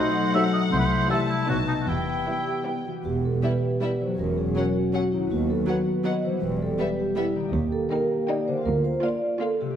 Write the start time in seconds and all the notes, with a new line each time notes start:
Already playing: B2 F#3 A3 C4 D#4 A4 C5 D#5 F#5
0.00 C5
0.17 F#4
0.35 F#3 A3 C4 D#4 A4 E5
0.53 D#4 D#5
0.72 C2 C3 A3 E4 C5 E5
0.79 B4
0.86 C5
0.93 G3
1.10 E3 G3 A3 E4 A4 E5 A5
1.29 G3 E4
1.49 B1 B2 F#3 B3 D#4 F#4 D#5
1.68 D#4 F#4 B4
1.81 F#4
1.88 E1 E2 E3 B3 E4 G4 G5
2.09 B3
2.27 G3 B3 E4
2.47 G4
2.66 G3 B3 E4 G4 B4
2.86 E3 E4 F#4
2.92 B3
2.96 G4
3.01 E1 B4
3.05 E2 B3 G4
3.25 A4
3.43 G3 E4 B4 E5
3.81 G3 E4 D5 E5
4.01 E3 C5
4.05 F#3
4.10 F#4
4.14 C#5
4.19 E1 E2 C#4 F#4 A#4
4.38 G#4
4.56 F#3 C#4 A#4 F#5
4.76 F#4
4.94 F#3 C#4 F#4 F#5
5.12 D#3 E4
5.18 F#3
5.22 F#4
5.27 B4
5.31 D#2 B3 F#4
5.50 A4
5.67 F#3 B3 B4 F#5
6.04 F#3 B3 D#5 F#5
6.24 E3 C5
6.28 G3
6.33 E4
6.37 B4
6.42 E1 E2 G3 G4 B4
6.62 A4
6.79 G3 B3 B4 E5
6.99 G4
7.16 G3 B3 E4 E5
7.35 D#3
7.40 A#3
7.45 G4
7.49 D#5
7.53 D#2 A#3 G4
7.72 A4
7.91 A#3 D#4 A#4 G5
8.28 A#3 D#4 D5 G5
8.47 D3 C5
8.52 A#3
8.57 F4
8.61 F5
8.66 D2 F4 A#4
8.84 C5
9.03 A#3 F4 D5 F5
9.41 A#3 F4 A4 F5
9.61 C3 G4
9.66 A3
9.70 G4